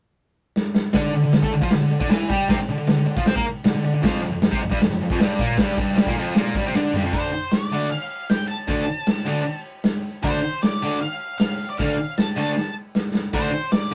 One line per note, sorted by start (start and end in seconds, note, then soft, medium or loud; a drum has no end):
0.56 snare medium
0.75 snare medium
0.93 1.13 D3 medium
0.93 1.14 D4 loud
0.93 kick loud
0.93 snare loud
0.93 crash medium
1.14 1.23 D3 medium
1.24 1.33 D3 medium
1.32 1.43 D3 medium
1.32 snare loud
1.32 tambourine loud
1.32 crash medium
1.42 1.52 A3 loud
1.42 1.52 A4 loud
1.42 kick loud
1.52 1.61 D3 medium
1.62 1.71 F3 medium
1.62 1.72 F4 loud
1.62 kick loud
1.71 1.80 D3 medium
1.71 snare loud
1.71 crash medium
1.81 1.90 D3 medium
1.91 1.99 D3 medium
2.00 2.09 D3 medium
2.00 2.10 D4 loud
2.00 kick loud
2.09 2.28 E3 medium
2.09 2.29 E4 loud
2.09 snare loud
2.09 tambourine medium
2.09 crash medium
2.28 2.48 G3 loud
2.28 2.48 G4 loud
2.28 kick loud
2.48 2.58 C3 loud
2.48 2.58 C4 loud
2.48 kick loud
2.48 snare loud
2.48 crash medium
2.59 muted distorted electric guitar stroke medium
2.69 2.77 D3 medium
2.78 2.86 D3 medium
2.85 2.96 D3 medium
2.85 snare loud
2.85 tambourine medium
2.85 crash medium
2.97 3.06 D3 medium
3.07 3.16 D3 medium
3.17 3.26 F3 medium
3.17 3.26 F4 loud
3.17 kick loud
3.26 3.35 C4 medium
3.26 3.36 C5 loud
3.26 snare loud
3.26 crash medium
3.35 3.45 A#3 medium
3.35 3.45 A#4 loud
3.35 kick loud
3.64 3.73 D3 medium
3.64 snare loud
3.64 tambourine medium
3.64 crash medium
3.74 3.83 D3 medium
3.84 3.93 D3 medium
3.94 4.03 D3 medium
4.02 4.21 F2 loud
4.02 4.22 F3 loud
4.02 kick loud
4.02 snare loud
4.02 crash medium
4.23 4.31 F2 medium
4.32 4.41 F2 medium
4.41 4.52 F2 medium
4.41 snare loud
4.41 tambourine medium
4.41 crash medium
4.50 4.60 C3 loud
4.50 4.61 C4 loud
4.50 kick loud
4.61 4.69 F2 medium
4.70 4.79 G2 medium
4.70 4.80 G3 loud
4.70 kick loud
4.80 4.89 F2 medium
4.80 snare loud
4.80 crash medium
4.90 5.00 F2 medium
5.01 5.09 F2 medium
5.10 5.19 F2 medium
5.10 5.20 F3 loud
5.10 kick loud
5.18 5.38 G2 medium
5.18 5.39 G3 loud
5.18 snare loud
5.18 tambourine loud
5.18 crash medium
5.39 5.58 A#2 medium
5.39 5.58 A#3 loud
5.39 kick loud
5.57 5.76 G2 medium
5.57 5.77 G3 loud
5.57 kick loud
5.57 snare loud
5.57 crash medium
5.78 5.95 G2 loud
5.78 5.96 G3 loud
5.78 kick loud
5.96 6.05 G2 medium
5.96 6.06 G3 loud
5.96 snare loud
5.96 tambourine loud
5.96 crash medium
6.06 6.15 A#2 medium
6.06 6.16 A#3 loud
6.06 kick loud
6.16 6.35 F2 medium
6.16 6.35 F3 loud
6.35 6.54 A#2 medium
6.35 6.55 A#3 loud
6.35 snare loud
6.35 crash medium
6.55 6.64 G2 medium
6.55 6.65 G3 loud
6.55 kick loud
6.66 6.74 C3 medium
6.66 6.75 C4 loud
6.73 6.93 D3 medium
6.73 6.94 D4 loud
6.73 snare medium
6.73 tambourine loud
6.93 7.02 G2 medium
6.93 7.03 G3 loud
6.93 floor tom medium
7.03 7.12 F2 medium
7.03 7.13 F3 loud
7.12 7.28 D3 medium
7.12 7.29 A3 medium
7.12 7.29 D4 loud
7.12 7.53 C5 medium
7.12 kick loud
7.12 crash medium
7.32 tambourine medium
7.42 tambourine soft
7.51 7.90 D5 medium
7.51 snare loud
7.51 tambourine medium
7.51 crash medium
7.62 tambourine medium
7.71 7.87 D3 medium
7.71 7.87 A3 medium
7.71 7.88 D4 medium
7.71 tambourine medium
7.90 8.30 F5 medium
7.90 tambourine soft
7.90 crash medium
8.01 tambourine soft
8.11 tambourine soft
8.29 8.47 G5 medium
8.29 snare loud
8.29 tambourine medium
8.29 crash medium
8.48 9.60 A5 medium
8.48 tambourine medium
8.68 8.83 D3 medium
8.68 8.84 A3 medium
8.68 8.84 D4 loud
8.68 kick loud
8.68 crash medium
8.87 tambourine medium
8.96 tambourine soft
9.06 snare loud
9.06 tambourine medium
9.06 crash medium
9.16 tambourine medium
9.25 9.41 D3 medium
9.25 9.41 A3 medium
9.25 9.42 D4 loud
9.25 tambourine medium
9.46 tambourine soft
9.46 crash medium
9.55 tambourine soft
9.65 tambourine soft
9.84 snare loud
9.84 tambourine medium
9.84 crash medium
10.04 tambourine medium
10.23 10.38 D3 medium
10.23 10.39 A3 medium
10.23 10.39 D4 loud
10.23 10.59 C5 medium
10.23 kick loud
10.23 crash medium
10.43 tambourine medium
10.61 10.98 D5 medium
10.61 snare loud
10.61 tambourine medium
10.61 crash medium
10.71 tambourine medium
10.81 10.97 D3 medium
10.81 10.97 A3 loud
10.81 10.98 D4 medium
10.81 tambourine medium
11.00 11.37 F5 medium
11.00 tambourine soft
11.00 crash medium
11.11 tambourine soft
11.21 tambourine soft
11.38 11.69 F5 medium
11.38 snare loud
11.38 tambourine medium
11.38 crash medium
11.60 tambourine medium
11.70 11.77 D5 medium
11.78 11.94 D3 loud
11.78 11.95 A3 medium
11.78 11.95 D4 loud
11.78 12.14 F5 medium
11.78 kick loud
11.78 tambourine soft
11.78 crash medium
11.89 tambourine soft
11.98 tambourine medium
12.08 tambourine soft
12.17 12.37 A5 loud
12.17 snare loud
12.17 tambourine medium
12.17 crash medium
12.27 tambourine medium
12.36 12.52 D3 medium
12.36 12.52 A3 medium
12.36 12.53 D4 loud
12.36 12.74 A5 loud
12.36 tambourine medium
12.47 tambourine soft
12.56 snare medium
12.56 tambourine soft
12.65 tambourine soft
12.76 tambourine soft
12.86 tambourine soft
12.95 snare medium
12.95 tambourine medium
13.05 tambourine soft
13.13 snare medium
13.13 tambourine medium
13.23 tambourine soft
13.33 13.49 D3 medium
13.33 13.49 A3 medium
13.33 13.50 D4 loud
13.33 13.70 C5 medium
13.33 kick loud
13.33 splash medium
13.33 crash medium
13.51 tambourine medium
13.71 13.94 D5 medium
13.71 snare loud
13.71 tambourine loud
13.71 crash medium
13.82 tambourine medium
13.90 tambourine medium